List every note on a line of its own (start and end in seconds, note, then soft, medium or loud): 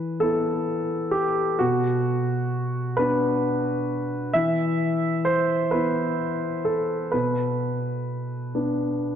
0.00 1.57 E3 soft
0.00 0.20 B4 soft
0.20 1.58 B3 soft
0.20 1.58 E4 soft
0.20 1.14 A4 medium
1.11 1.60 G4 medium
1.59 4.31 B2 soft
1.59 2.98 F#4 medium
2.97 4.32 B3 soft
2.97 4.32 D4 soft
2.97 3.43 B4 medium
4.34 7.09 E3 soft
4.34 5.27 E5 medium
5.25 5.73 C5 medium
5.71 7.09 B3 soft
5.71 7.09 E4 soft
5.71 6.65 B4 soft
6.65 7.13 A4 soft
7.12 9.15 B2 soft
7.12 8.54 B4 soft
8.55 9.15 B3 soft
8.55 9.15 D4 soft